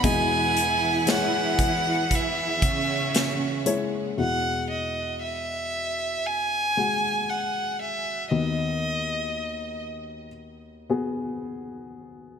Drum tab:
HH |xxxxxxxx|--------|--------|
SD |--o---o-|--------|--------|
BD |o--ooo--|--------|--------|